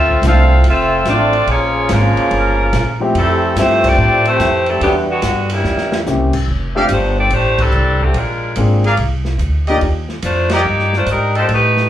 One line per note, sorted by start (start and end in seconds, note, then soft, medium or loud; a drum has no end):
0.00 0.21 D2 medium
0.00 0.23 A3 medium
0.00 0.22 C4 medium
0.00 0.22 F4 medium
0.00 0.23 F4 medium
0.00 0.23 A4 medium
0.00 0.23 E5 loud
0.09 kick medium
0.22 0.63 C2 medium
0.22 0.48 F3 medium
0.22 0.49 A3 medium
0.22 0.49 C4 soft
0.22 0.49 D4 medium
0.22 snare medium
0.22 hi-hat pedal medium
0.22 ride medium
0.26 0.63 A3 medium
0.26 0.64 C4 medium
0.26 0.49 E4 medium
0.26 0.64 F4 medium
0.26 0.64 A4 medium
0.26 0.64 E5 medium
0.26 0.64 F5 medium
0.64 1.04 F1 medium
0.64 1.05 A3 medium
0.64 1.05 F4 medium
0.64 ride medium
0.68 1.05 C4 medium
0.68 1.06 C4 medium
0.68 1.06 F4 medium
0.68 1.06 A4 medium
0.68 1.06 E5 loud
1.05 1.46 A1 medium
1.05 1.31 F3 medium
1.05 1.32 A3 medium
1.05 1.46 A3 medium
1.05 1.32 C4 medium
1.05 1.32 D4 medium
1.05 1.32 E4 medium
1.05 snare medium
1.05 hi-hat pedal soft
1.05 ride medium
1.09 1.47 F3 medium
1.09 1.47 C4 medium
1.09 1.47 D4 medium
1.09 1.47 F4 medium
1.09 1.47 A4 medium
1.09 1.47 D5 medium
1.33 ride medium
1.47 1.88 A#1 medium
1.47 1.90 F3 medium
1.47 1.90 G#3 medium
1.47 1.90 C#4 medium
1.47 ride medium
1.51 1.92 A#3 medium
1.51 1.92 F4 medium
1.51 1.91 G#4 medium
1.51 1.92 C#5 loud
1.89 2.15 G#1 medium
1.89 3.02 C#3 medium
1.89 3.02 F3 medium
1.89 2.33 G#3 medium
1.89 3.02 A#3 medium
1.89 3.02 C#4 medium
1.89 snare medium
1.89 hi-hat pedal medium
1.89 ride medium
1.93 3.02 F4 medium
1.93 3.02 A#4 medium
2.16 muted upright bass stroke soft
2.16 ride soft
2.31 2.72 G1 medium
2.31 ride medium
2.73 3.13 A#1 medium
2.73 snare medium
2.73 hi-hat pedal soft
2.73 ride medium
3.00 3.13 F3 medium
3.00 3.14 A3 medium
3.00 3.14 C4 medium
3.00 3.14 E4 medium
3.00 3.14 G4 medium
3.15 3.55 F2 medium
3.15 3.55 C3 medium
3.15 3.55 E3 medium
3.15 3.55 G3 medium
3.15 3.55 A3 medium
3.15 3.55 C4 medium
3.15 3.55 E4 medium
3.15 3.55 A4 medium
3.15 ride medium
3.56 3.97 G2 medium
3.56 3.85 E3 medium
3.56 4.21 F3 medium
3.56 4.21 A3 medium
3.56 3.85 A3 medium
3.56 3.85 C4 medium
3.56 4.21 C4 medium
3.56 4.21 E4 medium
3.56 3.85 E4 medium
3.56 4.21 G4 medium
3.56 3.86 G4 medium
3.56 snare medium
3.56 hi-hat pedal medium
3.56 ride medium
3.60 3.86 C5 medium
3.84 4.27 E3 medium
3.84 4.27 A3 medium
3.84 4.27 D4 medium
3.84 kick medium
3.84 crash medium
3.88 4.28 C4 medium
3.88 4.27 G4 medium
3.88 4.28 A4 medium
3.88 4.28 D5 medium
3.98 4.39 A2 medium
4.25 4.66 A3 medium
4.25 4.66 C4 medium
4.25 4.66 E4 medium
4.25 4.66 G4 medium
4.25 4.66 C5 loud
4.25 ride medium
4.30 4.67 E3 medium
4.40 4.80 F2 medium
4.40 snare medium
4.40 hi-hat pedal medium
4.40 ride medium
4.66 4.83 C3 medium
4.66 4.83 E3 medium
4.66 4.83 G3 medium
4.66 4.83 A3 medium
4.66 4.83 C4 medium
4.66 4.83 E4 medium
4.66 4.82 A4 medium
4.66 ride soft
4.81 5.22 E2 medium
4.81 4.95 B2 medium
4.81 4.95 D3 medium
4.81 4.96 D3 medium
4.81 4.95 F#3 medium
4.81 5.07 G3 medium
4.81 4.95 G3 medium
4.81 4.95 B3 medium
4.81 5.07 B3 medium
4.81 5.07 D4 medium
4.81 5.07 E4 medium
4.81 5.07 F#4 medium
4.81 4.95 G4 medium
4.81 ride medium
5.11 5.49 B2 medium
5.11 5.49 D3 medium
5.11 5.49 G3 medium
5.11 5.49 B3 medium
5.11 5.49 F#4 medium
5.22 5.64 G2 medium
5.22 snare medium
5.22 hi-hat pedal medium
5.22 ride medium
5.50 6.03 G2 medium
5.50 6.03 A#2 medium
5.50 6.03 E3 medium
5.50 6.04 G3 medium
5.50 6.03 A#3 medium
5.50 6.04 C#4 medium
5.50 6.04 E4 medium
5.50 ride medium
5.64 6.05 E2 medium
5.64 snare medium
5.78 snare medium
5.92 snare medium
6.06 6.47 C2 medium
6.06 6.31 A#3 medium
6.06 6.32 C4 soft
6.06 6.32 C#4 soft
6.06 6.32 E4 soft
6.06 6.32 G4 medium
6.06 snare soft
6.06 hi-hat pedal medium
6.33 kick medium
6.33 crash medium
6.48 6.89 F1 medium
6.75 6.88 A3 medium
6.75 6.88 C4 medium
6.75 6.89 D4 medium
6.75 6.89 F4 medium
6.75 6.86 G4 medium
6.75 6.89 G4 medium
6.75 6.86 A4 medium
6.75 6.86 D5 medium
6.75 6.86 F5 loud
6.89 7.29 G1 medium
6.89 hi-hat pedal medium
6.89 ride medium
6.93 7.17 A3 medium
6.93 7.17 D4 medium
6.93 7.17 G4 medium
6.93 7.17 C5 medium
7.20 7.32 C4 medium
7.20 7.32 G4 medium
7.20 7.32 A4 medium
7.20 7.32 D5 medium
7.30 7.71 A1 medium
7.30 7.60 G4 medium
7.30 7.60 C5 medium
7.30 ride medium
7.34 7.61 A3 medium
7.34 7.61 D4 medium
7.58 8.02 G3 medium
7.58 8.02 C4 medium
7.58 8.02 D4 medium
7.58 8.02 A4 medium
7.58 kick medium
7.58 crash medium
7.72 8.13 C2 medium
7.72 hi-hat pedal soft
8.00 8.17 D3 medium
8.00 8.16 A3 medium
8.00 8.16 C4 medium
8.00 8.17 G4 medium
8.00 kick soft
8.14 8.55 A#1 medium
8.14 8.58 F4 medium
8.14 8.58 A#4 medium
8.14 ride medium
8.19 8.59 G#3 medium
8.19 8.59 D4 medium
8.56 8.97 G#1 medium
8.56 8.82 A#3 medium
8.56 8.82 C4 medium
8.56 8.82 D4 medium
8.56 8.82 F4 medium
8.56 8.82 G#4 medium
8.56 hi-hat pedal medium
8.56 ride medium
8.84 8.95 G#4 medium
8.84 8.95 A#4 medium
8.84 8.95 D5 medium
8.84 8.95 F5 loud
8.84 ride soft
8.97 9.38 C2 medium
8.97 ride medium
9.25 snare soft
9.38 9.80 D2 medium
9.38 hi-hat pedal soft
9.38 ride medium
9.67 9.81 A#3 medium
9.67 9.81 D4 medium
9.67 9.82 D#4 medium
9.67 9.82 F4 medium
9.67 9.78 G4 medium
9.67 9.82 G4 medium
9.67 9.78 A#4 medium
9.67 9.78 D5 medium
9.67 9.78 D#5 medium
9.67 ride soft
9.81 10.22 D#2 medium
9.81 ride medium
10.09 snare soft
10.22 10.64 F2 medium
10.22 10.51 A3 medium
10.22 10.50 D4 medium
10.22 10.51 F4 medium
10.22 10.51 C5 medium
10.22 hi-hat pedal medium
10.22 ride medium
10.50 10.94 A#3 medium
10.50 10.94 D#4 medium
10.50 10.94 G4 medium
10.50 10.62 G4 medium
10.50 10.62 A#4 medium
10.50 10.62 D5 medium
10.50 10.94 D5 loud
10.50 10.62 D#5 medium
10.50 snare medium
10.50 ride medium
10.65 11.06 G2 medium
10.79 snare soft
10.93 11.09 A3 medium
10.93 11.09 D4 medium
10.93 11.09 F4 medium
10.93 snare soft
10.97 11.09 C5 medium
11.06 11.48 G#2 medium
11.06 hi-hat pedal soft
11.06 ride medium
11.11 11.35 G3 medium
11.11 11.36 D4 medium
11.11 11.35 D#4 medium
11.11 11.35 A#4 medium
11.35 11.50 F3 medium
11.35 11.50 A#3 medium
11.35 11.50 D4 medium
11.35 11.45 G4 medium
11.35 11.45 A4 medium
11.35 11.50 A4 medium
11.35 11.45 C5 medium
11.35 11.45 D#5 medium
11.35 ride soft
11.49 11.89 A2 medium
11.49 ride medium
11.54 11.89 A3 medium
11.54 11.89 D#4 medium
11.54 11.89 G4 medium
11.54 11.89 B4 medium
11.77 snare soft